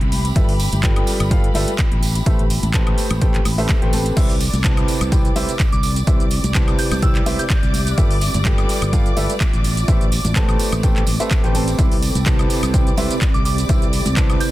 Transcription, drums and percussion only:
0.01 closed hi-hat
0.12 open hi-hat, tambourine, high conga
0.25 closed hi-hat, tambourine
0.36 kick, closed hi-hat
0.49 open hi-hat
0.60 open hi-hat, tambourine
0.72 closed hi-hat, tambourine, high conga
0.83 kick, clap, closed hi-hat
0.96 closed hi-hat, high woodblock
1.07 open hi-hat, tambourine
1.20 closed hi-hat, tambourine, high woodblock
1.31 kick, closed hi-hat, tambourine
1.44 closed hi-hat
1.54 open hi-hat, tambourine, high conga
1.68 closed hi-hat, tambourine
1.79 kick, clap, closed hi-hat
1.92 closed hi-hat
2.03 open hi-hat, tambourine
2.15 closed hi-hat, tambourine
2.26 kick, closed hi-hat
2.39 closed hi-hat
2.50 open hi-hat, tambourine
2.63 closed hi-hat, tambourine, high conga
2.73 kick, clap, closed hi-hat, tambourine
2.87 closed hi-hat, high woodblock
2.98 open hi-hat, tambourine
3.10 closed hi-hat, tambourine, high conga, high woodblock
3.21 kick, closed hi-hat, tambourine
3.34 clap, closed hi-hat
3.45 open hi-hat, tambourine, high conga, high woodblock
3.58 open hi-hat, tambourine
3.69 kick, clap, closed hi-hat, tambourine
3.82 closed hi-hat
3.93 open hi-hat, tambourine, high conga
4.06 closed hi-hat, tambourine
4.16 kick, closed hi-hat, crash, tambourine, shaker
4.30 open hi-hat, shaker
4.40 open hi-hat, tambourine
4.53 closed hi-hat, tambourine, high conga, shaker
4.64 kick, clap, closed hi-hat, tambourine, shaker
4.77 closed hi-hat, high woodblock, shaker
4.88 open hi-hat, tambourine
5.01 closed hi-hat, tambourine, high woodblock, shaker
5.12 kick, closed hi-hat, tambourine, shaker
5.25 closed hi-hat, shaker
5.36 open hi-hat, tambourine, high conga
5.49 closed hi-hat, tambourine, shaker
5.60 kick, clap, closed hi-hat, shaker
5.72 closed hi-hat, shaker
5.83 open hi-hat, tambourine
5.96 closed hi-hat, tambourine, shaker
6.07 kick, closed hi-hat, tambourine, shaker
6.20 closed hi-hat, shaker
6.31 open hi-hat, tambourine
6.44 closed hi-hat, tambourine, high conga, shaker
6.55 kick, clap, closed hi-hat, shaker
6.68 closed hi-hat, high woodblock, shaker
6.79 open hi-hat, tambourine
6.91 closed hi-hat, tambourine, high conga, high woodblock, shaker
7.02 kick, closed hi-hat, tambourine, shaker
7.15 clap, closed hi-hat, shaker
7.26 open hi-hat, tambourine, high conga
7.39 closed hi-hat, tambourine, shaker
7.50 kick, clap, closed hi-hat, shaker
7.63 closed hi-hat, shaker
7.73 open hi-hat, tambourine, high conga
7.87 closed hi-hat, tambourine, shaker
7.98 kick, closed hi-hat, shaker
8.11 open hi-hat, shaker
8.21 open hi-hat, tambourine
8.34 closed hi-hat, tambourine, high conga, shaker
8.45 kick, clap, closed hi-hat, shaker
8.58 closed hi-hat, high woodblock, shaker
8.69 open hi-hat, tambourine
8.82 closed hi-hat, tambourine, high woodblock, shaker
8.93 kick, closed hi-hat, tambourine, shaker
9.06 closed hi-hat, shaker
9.17 open hi-hat, tambourine, high conga
9.30 closed hi-hat, tambourine, shaker
9.40 kick, clap, closed hi-hat, tambourine, shaker
9.53 closed hi-hat, shaker
9.64 open hi-hat, tambourine
9.77 closed hi-hat, tambourine, shaker
9.88 kick, closed hi-hat, tambourine, shaker
10.01 closed hi-hat, shaker
10.12 open hi-hat, tambourine
10.24 closed hi-hat, tambourine, high conga, shaker
10.36 kick, clap, closed hi-hat, shaker
10.49 closed hi-hat, high woodblock, shaker
10.59 open hi-hat, tambourine
10.72 closed hi-hat, tambourine, high conga, high woodblock, shaker
10.83 kick, closed hi-hat, tambourine, shaker
10.96 clap, closed hi-hat, shaker
11.07 open hi-hat, tambourine, high conga
11.20 closed hi-hat, tambourine, shaker
11.31 kick, clap, closed hi-hat, shaker
11.44 closed hi-hat, shaker
11.55 open hi-hat, tambourine, high conga
11.67 closed hi-hat, tambourine, shaker
11.79 kick, closed hi-hat, tambourine, shaker
11.92 open hi-hat, shaker
12.02 open hi-hat, tambourine
12.15 closed hi-hat, tambourine, high conga, shaker
12.26 kick, clap, closed hi-hat, shaker
12.39 closed hi-hat, high woodblock, shaker
12.50 open hi-hat, tambourine
12.63 closed hi-hat, tambourine, high woodblock, shaker
12.74 kick, closed hi-hat, tambourine, shaker
12.87 closed hi-hat, shaker
12.97 open hi-hat, tambourine, high conga
13.10 closed hi-hat, tambourine, shaker
13.21 kick, clap, closed hi-hat, shaker
13.34 closed hi-hat, shaker
13.45 open hi-hat, tambourine
13.58 closed hi-hat, tambourine, shaker
13.69 kick, closed hi-hat, tambourine, shaker
13.82 closed hi-hat, shaker
13.93 open hi-hat, tambourine
14.05 closed hi-hat, tambourine, high conga, shaker
14.17 kick, clap, closed hi-hat, shaker
14.30 closed hi-hat, high woodblock, shaker
14.40 open hi-hat, tambourine

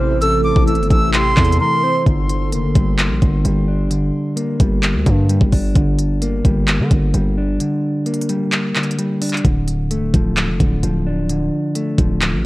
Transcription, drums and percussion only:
0.22 closed hi-hat
0.56 kick
0.68 closed hi-hat
0.76 closed hi-hat
0.83 closed hi-hat
0.91 kick, closed hi-hat
1.14 clap, closed hi-hat
1.37 kick, clap, closed hi-hat
1.45 closed hi-hat
1.52 closed hi-hat
2.06 kick, closed hi-hat
2.29 closed hi-hat
2.52 closed hi-hat
2.75 kick, closed hi-hat
2.99 clap, closed hi-hat
3.22 kick, closed hi-hat
3.45 closed hi-hat
3.91 closed hi-hat
4.37 closed hi-hat
4.60 kick, closed hi-hat
4.83 clap, closed hi-hat
5.06 kick, closed hi-hat
5.29 closed hi-hat
5.41 kick
5.52 kick, open hi-hat
5.75 kick, closed hi-hat
5.99 closed hi-hat
6.22 closed hi-hat
6.45 kick, closed hi-hat
6.68 clap, closed hi-hat
6.91 kick, closed hi-hat
7.14 closed hi-hat
7.60 closed hi-hat
8.06 closed hi-hat
8.14 closed hi-hat
8.22 closed hi-hat
8.29 closed hi-hat
8.52 clap, closed hi-hat
8.76 clap, closed hi-hat
8.83 closed hi-hat
8.91 closed hi-hat
8.99 closed hi-hat
9.22 closed hi-hat, open hi-hat
9.29 clap, closed hi-hat
9.37 closed hi-hat
9.45 kick, closed hi-hat
9.68 closed hi-hat
9.91 closed hi-hat
10.14 kick, closed hi-hat
10.37 clap, closed hi-hat
10.60 kick, closed hi-hat
10.83 closed hi-hat
11.29 closed hi-hat
11.76 closed hi-hat
11.98 kick, closed hi-hat
12.22 clap, closed hi-hat

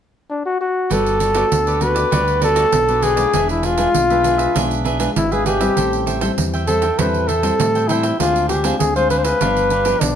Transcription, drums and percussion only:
0.91 pandeiro
1.06 pandeiro
1.20 pandeiro
1.34 pandeiro
1.52 pandeiro
1.67 pandeiro
1.81 pandeiro
1.96 pandeiro
2.12 pandeiro
2.28 pandeiro
2.42 pandeiro
2.56 pandeiro
2.72 pandeiro
2.88 pandeiro
3.02 pandeiro
3.17 pandeiro
3.33 pandeiro
3.49 pandeiro
3.63 pandeiro
3.78 pandeiro
3.94 pandeiro
4.10 pandeiro
4.24 pandeiro
4.39 pandeiro
4.56 pandeiro
4.71 pandeiro
4.85 pandeiro
5.00 pandeiro
5.16 pandeiro
5.32 pandeiro
5.46 pandeiro
5.61 pandeiro
5.77 pandeiro
5.93 pandeiro
6.07 pandeiro
6.21 pandeiro
6.38 pandeiro
6.54 pandeiro
6.67 pandeiro
6.82 pandeiro
6.99 pandeiro
7.14 pandeiro
7.29 pandeiro
7.43 pandeiro
7.60 pandeiro
7.75 pandeiro
7.89 pandeiro
8.03 pandeiro
8.20 pandeiro
8.36 pandeiro
8.49 pandeiro
8.64 pandeiro
8.80 pandeiro
8.96 pandeiro
9.10 pandeiro
9.24 pandeiro
9.41 pandeiro
9.57 pandeiro
9.70 pandeiro
9.85 pandeiro
10.01 pandeiro

